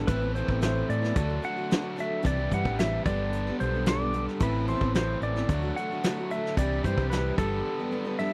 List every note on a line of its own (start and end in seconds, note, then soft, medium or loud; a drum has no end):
0.07 0.41 A1 loud
0.07 0.21 A2 medium
0.07 0.21 E3 medium
0.07 0.21 B3 medium
0.07 0.21 C4 medium
0.07 0.20 E4 medium
0.07 1.15 A4 medium
0.07 0.35 B4 medium
0.07 kick loud
0.07 closed hi-hat medium
0.22 0.35 B3 soft
0.22 0.35 C4 soft
0.22 0.35 E4 soft
0.35 0.48 E3 medium
0.35 0.49 B3 medium
0.35 0.49 C4 medium
0.35 0.48 E4 medium
0.35 0.60 C5 medium
0.35 closed hi-hat medium
0.48 0.81 A1 medium
0.48 0.63 B3 soft
0.48 0.61 C4 soft
0.48 0.62 E4 medium
0.48 kick medium
0.61 1.02 A2 medium
0.61 1.02 E3 medium
0.61 1.03 C4 medium
0.61 1.00 E4 medium
0.61 0.90 C5 medium
0.61 snare medium
0.61 closed hi-hat medium
0.89 1.11 A2 medium
0.89 1.45 D5 loud
0.89 closed hi-hat medium
1.02 1.16 B3 soft
1.02 1.16 C4 soft
1.02 1.16 E4 soft
1.02 snare soft
1.15 1.38 D2 medium
1.15 1.29 D3 medium
1.15 2.23 F#3 medium
1.15 1.29 A3 medium
1.15 1.29 D4 medium
1.15 1.28 F#4 medium
1.15 kick loud
1.15 closed hi-hat medium
1.29 1.42 A3 soft
1.29 1.42 D4 soft
1.29 1.43 F#4 medium
1.42 1.56 D3 medium
1.42 1.57 A3 medium
1.42 1.57 D4 medium
1.42 1.55 F#4 medium
1.42 2.00 F#5 loud
1.42 closed hi-hat medium
1.56 1.70 A3 soft
1.56 1.71 D4 soft
1.56 1.70 F#4 soft
1.71 1.84 D3 medium
1.71 1.83 A3 medium
1.71 1.82 D4 medium
1.71 1.81 F#4 medium
1.71 snare loud
1.71 closed hi-hat medium
1.82 1.97 A3 soft
1.82 1.97 D4 soft
1.82 1.96 F#4 soft
1.96 2.22 D3 medium
1.96 2.22 A3 medium
1.96 2.22 D4 medium
1.96 2.23 F#4 medium
1.96 2.24 E5 medium
1.96 closed hi-hat medium
2.22 2.47 C2 loud
2.22 2.37 C3 medium
2.22 2.37 E3 medium
2.22 2.37 G3 medium
2.22 2.37 D4 medium
2.22 2.36 G4 medium
2.22 2.53 D5 loud
2.22 kick medium
2.22 closed hi-hat medium
2.27 3.05 E4 medium
2.27 3.06 G4 medium
2.37 2.51 G3 soft
2.37 2.51 D4 soft
2.37 2.51 G4 soft
2.51 2.62 G2 medium
2.51 2.65 E3 medium
2.51 2.65 G3 medium
2.51 2.64 D4 medium
2.51 2.63 G4 medium
2.51 2.80 F#5 medium
2.51 kick medium
2.51 closed hi-hat medium
2.65 2.98 A1 medium
2.65 2.78 G3 soft
2.65 2.78 D4 soft
2.65 2.78 G4 medium
2.65 kick medium
2.79 3.06 C3 medium
2.79 3.05 E3 medium
2.79 3.04 G3 medium
2.79 3.05 D4 medium
2.79 3.06 G4 medium
2.79 3.04 E5 medium
2.79 snare medium
2.79 closed hi-hat medium
3.05 3.50 G1 medium
3.05 4.39 G2 medium
3.05 4.39 D3 medium
3.05 3.46 G3 medium
3.05 3.46 B3 medium
3.05 3.46 D4 medium
3.05 4.40 G4 loud
3.05 3.46 A4 medium
3.05 3.60 D5 loud
3.05 kick loud
3.05 closed hi-hat medium
3.33 closed hi-hat medium
3.47 3.59 B3 soft
3.47 3.60 D4 soft
3.47 3.60 A4 medium
3.60 4.26 B1 medium
3.60 3.73 G3 medium
3.60 3.73 B3 medium
3.60 3.74 D4 medium
3.60 3.73 A4 medium
3.60 3.88 C5 medium
3.60 closed hi-hat medium
3.75 3.87 B3 soft
3.75 3.87 D4 soft
3.75 3.87 A4 soft
3.86 4.00 G3 medium
3.86 4.01 B3 medium
3.86 4.00 D4 medium
3.86 4.00 A4 medium
3.86 4.25 D5 loud
3.86 snare loud
3.86 closed hi-hat medium
4.01 4.13 B3 soft
4.01 4.13 D4 soft
4.01 4.14 A4 soft
4.13 4.40 G3 medium
4.13 4.41 B3 medium
4.13 4.41 D4 medium
4.13 4.41 A4 medium
4.13 closed hi-hat medium
4.29 snare soft
4.40 4.73 A1 loud
4.40 4.68 A2 medium
4.40 4.68 E3 medium
4.40 4.68 B3 medium
4.40 4.68 C4 medium
4.40 4.68 E4 medium
4.40 5.48 A4 medium
4.40 4.68 B4 loud
4.40 kick loud
4.40 closed hi-hat medium
4.67 4.82 E3 medium
4.67 4.82 B3 medium
4.67 4.82 C4 medium
4.67 4.81 E4 medium
4.67 4.93 C5 medium
4.67 closed hi-hat medium
4.81 5.14 A1 medium
4.81 4.96 B3 medium
4.81 4.96 C4 soft
4.81 4.95 E4 medium
4.81 kick medium
4.94 5.36 A2 medium
4.94 5.36 E3 medium
4.94 5.37 C4 medium
4.94 5.35 E4 medium
4.94 5.23 C5 medium
4.94 snare loud
4.94 closed hi-hat medium
5.22 5.43 A1 medium
5.22 5.78 D5 loud
5.22 closed hi-hat medium
5.36 5.49 B3 soft
5.36 5.49 C4 soft
5.36 5.49 E4 medium
5.36 snare soft
5.49 5.70 D2 medium
5.49 5.62 D3 medium
5.49 6.56 F#3 medium
5.49 5.62 A3 medium
5.49 5.62 D4 medium
5.49 5.61 F#4 medium
5.49 kick loud
5.49 closed hi-hat medium
5.63 5.76 A3 soft
5.63 5.76 D4 medium
5.63 5.76 F#4 medium
5.76 5.90 D3 soft
5.76 5.90 A3 medium
5.76 5.90 D4 medium
5.76 5.90 F#4 medium
5.76 6.32 F#5 medium
5.76 closed hi-hat medium
5.91 6.04 A3 soft
5.91 6.04 D4 soft
5.91 6.03 F#4 soft
6.03 6.17 D3 medium
6.03 6.17 A3 medium
6.03 6.18 D4 medium
6.03 6.17 F#4 medium
6.03 snare loud
6.03 closed hi-hat medium
6.18 6.30 A3 soft
6.18 6.31 D4 soft
6.18 6.31 F#4 soft
6.30 6.57 D3 soft
6.30 6.57 A3 medium
6.30 6.57 D4 medium
6.30 6.58 F#4 medium
6.30 6.56 E5 medium
6.30 closed hi-hat medium
6.46 snare soft
6.57 6.79 C2 loud
6.57 6.84 C3 medium
6.57 6.84 E3 medium
6.57 6.84 G3 medium
6.57 6.84 D4 medium
6.57 7.38 E4 medium
6.57 6.84 G4 medium
6.57 6.85 D5 medium
6.57 kick loud
6.57 closed hi-hat medium
6.84 6.95 G2 medium
6.84 6.98 E3 medium
6.84 6.98 G3 medium
6.84 6.98 D4 medium
6.84 6.98 G4 medium
6.84 7.10 C5 medium
6.84 kick medium
6.84 closed hi-hat medium
6.98 7.30 C2 medium
6.98 7.12 G3 soft
6.98 7.12 D4 soft
6.98 7.12 G4 medium
6.98 kick medium
7.10 7.38 C3 medium
7.10 7.38 E3 medium
7.10 7.38 G3 medium
7.10 7.39 D4 medium
7.10 7.39 G4 medium
7.10 7.35 B4 medium
7.10 snare medium
7.10 closed hi-hat medium
7.38 7.60 G1 medium
7.38 8.33 G2 medium
7.38 8.33 D3 loud
7.38 7.79 G3 medium
7.38 7.79 B3 medium
7.38 7.79 D4 medium
7.38 8.33 G4 medium
7.38 8.33 A4 medium
7.38 7.78 A4 medium
7.38 kick loud
7.38 closed hi-hat medium
7.79 7.91 B3 soft
7.79 7.92 D4 soft
7.79 7.92 A4 soft
7.91 8.05 G3 soft
7.91 8.05 B3 medium
7.91 8.05 D4 medium
7.91 8.04 A4 medium
8.05 8.18 B3 soft
8.05 8.19 D4 soft
8.05 8.18 A4 medium
8.19 8.32 G3 medium
8.19 8.32 B3 medium
8.19 8.32 D4 medium
8.19 8.30 A4 medium
8.19 8.33 E5 medium